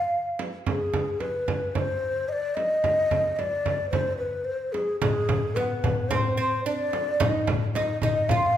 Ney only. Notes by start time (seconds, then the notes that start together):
Already playing: F5
0.67 G#4
1.20 B4
1.75 C5 C#5
2.29 D#5
2.33 D5
2.55 D#5
3.36 D5 D#5
3.90 C5
4.18 B4
4.45 C5
4.72 G#4
5.01 G#4
5.55 B4
6.09 C5 C#5
6.38 C5
6.65 D5
7.21 D#5
7.75 D#5
8.02 D#5
8.29 F5